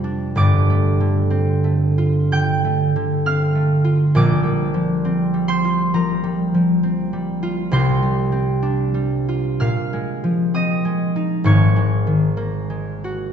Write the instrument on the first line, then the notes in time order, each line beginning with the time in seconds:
harp
Already playing: F2 C3 F3 G3 C4 F4 G4 A4 F5 G5
0.04 D4
0.35 G1 G2 D5 D6
0.70 A3
1.00 D3
1.30 C4
1.64 A3
1.98 F4
2.32 D3 G5 G6
2.64 A3
2.96 D3
3.26 C4 F5 F6
3.55 A3
3.84 F4
4.15 A#1 A#2 D5 D6
4.43 G3
4.74 F3
5.05 C4
5.34 G3
5.48 C5 C6
5.64 F4
5.94 F3 A#4 A#5
6.24 G3
6.54 F3
6.83 C4
7.13 G3
7.43 F4
7.71 C2 C3 C5 C6
8.03 G3
8.32 C4
8.62 D4
8.94 G3
9.29 F4
9.60 A#2 F5 F6
9.93 G#3
10.24 F3
10.54 C4 D#5 D#6
10.85 G#3
11.16 D#4
11.44 G#1 G#2 C#5 C#6
11.76 G#3
12.07 D#3
12.37 A#3
12.70 G#3
13.04 F#4